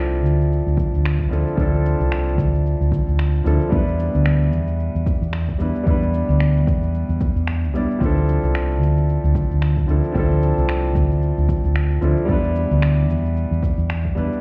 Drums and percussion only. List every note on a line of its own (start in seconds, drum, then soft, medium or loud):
0.14 cabasa soft
0.26 cabasa medium
0.41 cabasa soft
0.53 cabasa soft
0.68 cabasa soft
0.77 kick loud
0.77 cabasa medium
0.95 cabasa soft
1.05 finger snap loud
1.05 cabasa soft
1.19 kick medium
1.19 cabasa soft
1.33 cabasa medium
1.48 cabasa soft
1.58 kick loud
1.58 cabasa soft
1.74 cabasa soft
1.86 cabasa medium
2.01 cabasa soft
2.12 finger snap loud
2.12 cabasa soft
2.28 cabasa soft
2.38 kick loud
2.38 cabasa medium
2.55 cabasa soft
2.66 cabasa soft
2.82 cabasa soft
2.92 kick loud
2.92 cabasa medium
3.09 cabasa soft
3.19 finger snap medium
3.19 cabasa soft
3.35 cabasa soft
3.46 cabasa medium
3.61 cabasa soft
3.72 kick loud
3.72 cabasa soft
3.88 cabasa soft
3.99 cabasa medium
4.15 cabasa soft
4.26 finger snap loud
4.26 cabasa soft
4.42 cabasa soft
4.53 cabasa medium
4.68 cabasa soft
4.80 cabasa soft
4.96 cabasa soft
5.06 kick loud
5.06 cabasa medium
5.23 cabasa soft
5.33 finger snap loud
5.33 cabasa soft
5.49 kick medium
5.49 cabasa soft
5.60 cabasa medium
5.75 cabasa soft
5.87 kick loud
5.87 cabasa soft
6.03 cabasa soft
6.14 cabasa medium
6.30 cabasa soft
6.40 finger snap loud
6.40 cabasa soft
6.57 cabasa soft
6.67 kick loud
6.67 cabasa medium
6.83 cabasa soft
6.94 cabasa soft
7.09 cabasa soft
7.21 kick loud
7.21 cabasa medium
7.36 cabasa soft
7.47 finger snap medium
7.47 cabasa soft
7.64 cabasa soft
7.75 cabasa medium
7.91 cabasa soft
8.01 kick loud
8.01 cabasa soft
8.17 cabasa soft
8.29 cabasa medium
8.44 cabasa soft
8.55 finger snap medium
8.55 cabasa soft
8.71 cabasa soft
8.83 cabasa medium
8.98 cabasa soft
9.09 cabasa soft
9.24 cabasa soft
9.35 kick medium
9.35 cabasa medium
9.51 cabasa soft
9.62 finger snap medium
9.62 cabasa soft
9.77 kick medium
9.77 cabasa soft
9.89 cabasa medium
10.04 cabasa soft
10.15 kick loud
10.15 cabasa soft
10.31 cabasa soft
10.43 cabasa medium
10.58 cabasa soft
10.69 finger snap medium
10.69 cabasa soft
10.85 cabasa soft
10.95 kick medium
10.95 cabasa medium
11.11 cabasa soft
11.23 cabasa soft
11.38 cabasa soft
11.49 kick loud
11.49 cabasa medium
11.65 cabasa soft
11.76 finger snap medium
11.76 cabasa soft
11.91 cabasa soft
12.02 cabasa medium
12.17 cabasa soft
12.29 kick loud
12.29 cabasa soft
12.44 cabasa soft
12.56 cabasa medium
12.71 cabasa soft
12.82 finger snap loud
12.82 cabasa soft
12.99 cabasa soft
13.10 cabasa medium
13.26 cabasa soft
13.37 cabasa soft
13.53 cabasa soft
13.63 kick medium
13.63 cabasa medium
13.79 cabasa soft
13.90 finger snap loud
13.90 cabasa soft
14.05 kick medium
14.05 cabasa soft
14.17 cabasa medium
14.33 cabasa soft